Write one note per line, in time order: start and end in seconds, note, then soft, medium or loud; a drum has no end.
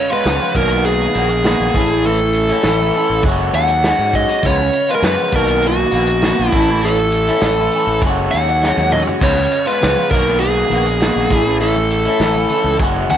0.00 0.54 B4 medium
0.00 0.54 F5 medium
0.00 0.54 C#6 medium
0.10 0.25 G#3 medium
0.10 0.26 B3 medium
0.10 0.27 F4 medium
0.10 0.56 B4 medium
0.10 closed hi-hat medium
0.24 0.38 C#2 loud
0.24 0.53 C#3 medium
0.24 0.53 F3 medium
0.24 0.42 G#3 medium
0.24 0.41 B3 medium
0.24 0.39 F4 medium
0.24 snare loud
0.24 closed hi-hat medium
0.40 0.55 G#3 medium
0.40 0.54 B3 medium
0.40 0.53 F4 medium
0.54 1.06 B1 medium
0.54 1.42 B2 medium
0.54 1.13 D#3 medium
0.54 1.14 A#3 medium
0.54 1.15 B3 medium
0.54 0.85 A#4 medium
0.54 1.73 D#5 medium
0.54 1.73 F#5 medium
0.54 1.73 A#5 medium
0.54 kick medium
0.54 closed hi-hat medium
0.59 1.16 F#4 loud
0.70 closed hi-hat medium
0.85 2.06 G#4 medium
0.85 closed hi-hat medium
1.14 1.53 A#1 medium
1.14 1.29 D#3 medium
1.14 1.29 A#3 medium
1.14 1.29 B3 medium
1.14 1.28 F#4 medium
1.14 closed hi-hat medium
1.29 muted clean electric guitar stroke medium
1.29 closed hi-hat medium
1.43 1.72 B2 medium
1.43 1.72 D#3 medium
1.43 1.73 A#3 medium
1.43 1.73 B3 medium
1.43 1.74 F#4 medium
1.43 snare loud
1.43 closed hi-hat medium
1.60 1.72 A#1 medium
1.74 2.51 A1 medium
1.74 2.04 A2 medium
1.74 2.04 E3 medium
1.74 3.22 A3 medium
1.74 1.92 A3 medium
1.74 1.91 C#4 medium
1.74 1.89 E4 medium
1.74 3.22 E5 medium
1.74 5.29 C#6 medium
1.74 kick medium
1.74 closed hi-hat medium
1.90 2.05 A3 medium
1.90 2.05 C#4 medium
1.90 2.07 E4 medium
2.04 2.49 A2 medium
2.04 2.20 E3 medium
2.04 2.20 A3 medium
2.04 2.20 C#4 medium
2.04 2.20 E4 medium
2.04 3.21 A4 medium
2.04 closed hi-hat soft
2.21 muted clean electric guitar stroke medium
2.33 closed hi-hat medium
2.49 2.65 A3 medium
2.49 2.66 C#4 medium
2.49 2.66 E4 medium
2.49 closed hi-hat medium
2.62 2.89 A1 medium
2.62 3.09 A2 medium
2.62 2.93 E3 medium
2.62 2.81 A3 medium
2.62 snare loud
2.62 closed hi-hat medium
2.67 2.80 C#4 medium
2.67 2.78 E4 medium
2.80 2.94 A3 medium
2.80 2.95 C#4 medium
2.80 2.96 E4 medium
2.93 3.22 E3 medium
2.93 3.23 A3 medium
2.93 3.23 C#4 medium
2.93 closed hi-hat medium
2.98 3.24 E4 medium
3.10 3.22 A1 medium
3.23 3.49 F#1 loud
3.23 3.53 F#3 medium
3.23 3.53 G#3 medium
3.23 4.42 G#4 medium
3.23 4.42 F#5 medium
3.23 kick loud
3.23 closed hi-hat medium
3.27 3.54 C#4 medium
3.27 3.55 F#4 loud
3.53 3.92 D#2 medium
3.53 3.84 F#3 medium
3.53 3.70 G#3 medium
3.53 3.69 C#4 medium
3.53 3.69 F#4 medium
3.53 4.16 F#5 loud
3.53 closed hi-hat medium
3.68 muted clean electric guitar stroke soft
3.68 closed hi-hat medium
3.83 4.13 F#3 medium
3.83 4.15 G#3 medium
3.83 4.15 C#4 medium
3.83 snare loud
3.83 closed hi-hat medium
3.88 4.16 F#4 loud
3.98 4.24 G#2 medium
4.13 4.42 F#3 medium
4.13 4.32 G#3 medium
4.13 4.30 C#4 medium
4.13 4.45 D#5 medium
4.13 kick medium
4.13 closed hi-hat soft
4.17 4.28 F#4 medium
4.29 4.43 C#4 medium
4.29 4.42 F#4 medium
4.29 closed hi-hat medium
4.33 4.44 G#3 medium
4.43 4.69 C#2 medium
4.43 4.89 C#3 medium
4.43 4.61 F3 medium
4.43 4.61 G#3 medium
4.43 5.33 B4 medium
4.43 4.91 C#5 loud
4.43 5.32 F5 medium
4.43 kick medium
4.43 closed hi-hat medium
4.47 4.60 B3 loud
4.47 4.60 F4 loud
4.61 muted clean electric guitar stroke medium
4.73 closed hi-hat medium
4.88 5.04 B3 medium
4.88 5.05 F4 medium
4.88 4.95 B4 medium
4.88 closed hi-hat medium
4.93 5.04 G#3 medium
4.93 5.02 A#4 medium
5.02 5.15 F#2 loud
5.02 5.32 C#3 medium
5.02 5.32 F3 medium
5.02 5.20 G#3 medium
5.02 5.19 B3 medium
5.02 5.17 F4 medium
5.02 5.32 B4 medium
5.02 snare loud
5.02 closed hi-hat medium
5.19 5.33 G#3 medium
5.19 5.32 B3 medium
5.19 5.32 F4 medium
5.32 5.84 B1 medium
5.32 6.23 B2 medium
5.32 5.92 D#3 loud
5.32 5.93 A#3 loud
5.32 5.94 B3 medium
5.32 5.65 A#4 medium
5.32 6.52 D#5 medium
5.32 6.52 F#5 medium
5.32 6.52 A#5 medium
5.32 kick loud
5.32 closed hi-hat medium
5.36 5.95 F#4 loud
5.47 closed hi-hat medium
5.62 closed hi-hat medium
5.67 6.50 F#4 medium
5.91 6.31 A#1 medium
5.91 6.09 D#3 medium
5.91 6.09 A#3 medium
5.91 6.09 B3 medium
5.91 closed hi-hat medium
5.96 6.09 F#4 medium
6.06 muted clean electric guitar stroke soft
6.06 closed hi-hat medium
6.22 6.52 B2 medium
6.22 6.52 D#3 medium
6.22 snare loud
6.22 closed hi-hat medium
6.26 6.53 A#3 loud
6.26 6.53 B3 medium
6.26 6.53 F#4 medium
6.39 6.51 A#1 medium
6.50 7.29 A1 medium
6.50 6.81 A2 medium
6.50 6.88 E4 medium
6.50 8.01 E5 medium
6.50 10.08 C#6 medium
6.50 kick medium
6.50 closed hi-hat medium
6.54 6.83 E3 medium
6.54 6.71 A3 medium
6.54 6.69 C#4 loud
6.54 6.68 E4 medium
6.54 8.01 A4 medium
6.69 6.83 A3 medium
6.69 6.85 C#4 medium
6.69 6.85 E4 medium
6.82 7.27 A2 medium
6.82 6.98 E3 medium
6.82 6.98 A3 medium
6.82 6.98 C#4 loud
6.82 6.98 E4 medium
6.82 7.99 A4 medium
6.82 closed hi-hat medium
6.99 muted clean electric guitar stroke soft
7.12 closed hi-hat medium
7.27 7.43 A3 medium
7.27 7.44 C#4 medium
7.27 7.44 E4 medium
7.27 closed hi-hat medium
7.41 7.67 A1 loud
7.41 7.87 A2 medium
7.41 7.72 E3 medium
7.41 snare loud
7.41 closed hi-hat medium
7.45 7.60 A3 medium
7.45 7.59 C#4 medium
7.45 7.58 E4 medium
7.59 7.74 A3 medium
7.59 7.75 C#4 medium
7.59 7.76 E4 medium
7.71 8.01 E3 medium
7.71 closed hi-hat medium
7.75 8.02 A3 medium
7.75 8.02 C#4 medium
7.75 8.03 E4 medium
7.87 8.00 A1 medium
8.02 8.28 F#1 medium
8.02 8.33 F#3 medium
8.02 8.34 G#3 medium
8.02 8.35 C#4 medium
8.02 9.20 G#4 medium
8.02 9.20 F#5 medium
8.02 kick loud
8.02 closed hi-hat medium
8.07 8.36 F#4 medium
8.31 8.71 D#2 medium
8.31 8.61 F#3 medium
8.31 8.49 G#3 medium
8.31 8.93 F#5 medium
8.31 closed hi-hat medium
8.36 8.48 C#4 medium
8.36 8.48 F#4 medium
8.48 muted clean electric guitar stroke medium
8.48 closed hi-hat medium
8.62 8.91 F#3 medium
8.62 8.93 G#3 medium
8.62 8.93 C#4 medium
8.62 8.94 F#4 medium
8.62 snare medium
8.77 9.02 D#2 medium
8.77 high tom medium
8.92 9.20 F#3 medium
8.92 9.07 G#3 medium
8.92 9.06 C#4 medium
8.92 9.05 F#4 medium
8.92 9.00 D#5 medium
8.92 mid tom medium
9.06 9.20 G#3 medium
9.06 9.20 C#4 medium
9.06 9.19 F#4 medium
9.06 floor tom medium
9.20 9.46 C#2 medium
9.20 9.65 C#3 medium
9.20 9.35 F3 medium
9.20 9.35 G#3 medium
9.20 9.35 B3 loud
9.20 9.35 F4 medium
9.20 10.10 B4 medium
9.20 9.64 C#5 medium
9.20 10.11 F5 medium
9.20 kick medium
9.20 closed hi-hat medium
9.20 crash medium
9.36 muted clean electric guitar stroke soft
9.36 high conga medium
9.51 closed hi-hat medium
9.66 9.82 G#3 medium
9.66 9.82 B3 medium
9.66 9.83 F4 medium
9.66 10.10 B4 medium
9.66 closed hi-hat medium
9.81 9.95 C#2 loud
9.81 10.09 C#3 medium
9.81 10.10 F3 medium
9.81 9.99 G#3 medium
9.81 9.97 B3 medium
9.81 9.95 F4 medium
9.81 snare loud
9.81 closed hi-hat medium
9.81 high conga medium
9.96 10.11 G#3 soft
9.96 10.10 B3 medium
9.96 10.09 F4 medium
9.96 high conga medium
10.10 10.62 B1 medium
10.10 10.99 B2 medium
10.10 10.69 D#3 medium
10.10 10.71 A#3 medium
10.10 10.71 B3 medium
10.10 10.72 F#4 loud
10.10 10.40 A#4 medium
10.10 11.29 D#5 medium
10.10 11.29 F#5 medium
10.10 11.28 A#5 medium
10.10 kick loud
10.10 closed hi-hat medium
10.10 low conga medium
10.27 snare soft
10.27 closed hi-hat medium
10.40 11.55 G#4 medium
10.40 closed hi-hat medium
10.70 11.09 A#1 medium
10.70 10.86 D#3 medium
10.70 10.86 A#3 medium
10.70 10.85 B3 medium
10.70 10.85 F#4 medium
10.70 closed hi-hat medium
10.70 high conga medium
10.70 low conga medium
10.86 muted clean electric guitar stroke medium
10.86 closed hi-hat medium
11.00 11.28 B2 medium
11.00 11.28 D#3 medium
11.00 11.29 A#3 medium
11.00 11.29 B3 loud
11.00 11.29 F#4 medium
11.00 snare loud
11.00 closed hi-hat medium
11.16 11.28 A#1 medium
11.27 12.06 A1 medium
11.27 11.59 A2 medium
11.27 11.60 E3 medium
11.27 12.76 A3 medium
11.27 12.77 E5 medium
11.27 13.18 C#6 medium
11.27 kick loud
11.27 closed hi-hat medium
11.27 high conga medium
11.27 low conga medium
11.32 11.46 A3 loud
11.32 11.45 C#4 medium
11.32 11.44 E4 medium
11.45 11.61 A3 medium
11.45 11.62 C#4 medium
11.45 11.62 E4 medium
11.60 12.05 A2 medium
11.60 11.76 E3 medium
11.60 11.76 A3 medium
11.60 11.76 C#4 medium
11.60 11.75 E4 loud
11.60 12.76 A4 medium
11.60 closed hi-hat medium
11.74 muted clean electric guitar stroke soft
11.74 high conga medium
11.90 closed hi-hat medium
12.05 12.21 A3 medium
12.05 12.22 C#4 medium
12.05 12.22 E4 medium
12.05 closed hi-hat medium
12.20 12.45 A1 loud
12.20 12.65 A2 medium
12.20 12.50 E3 medium
12.20 12.36 A3 medium
12.20 12.36 C#4 medium
12.20 12.34 E4 medium
12.20 snare medium
12.20 closed hi-hat medium
12.20 high conga medium
12.35 12.51 A3 medium
12.35 12.52 C#4 medium
12.35 12.52 E4 medium
12.35 high conga medium
12.49 12.78 E3 medium
12.49 12.78 A3 medium
12.49 12.79 C#4 medium
12.49 closed hi-hat medium
12.49 low conga medium
12.54 12.79 E4 medium
12.64 12.77 C#2 medium
12.79 13.04 F#1 loud
12.79 13.09 F#3 medium
12.79 13.10 G#3 medium
12.79 13.11 C#4 medium
12.79 13.18 G#4 medium
12.79 13.18 F#5 medium
12.79 kick loud
12.79 closed hi-hat medium
12.83 13.12 F#4 medium
13.09 13.18 D#2 medium
13.09 13.18 F#3 medium
13.09 13.18 G#3 medium
13.09 13.18 C#4 medium
13.09 13.18 F#4 medium
13.09 13.18 F#5 loud
13.09 closed hi-hat medium
13.09 high conga medium
13.09 low conga medium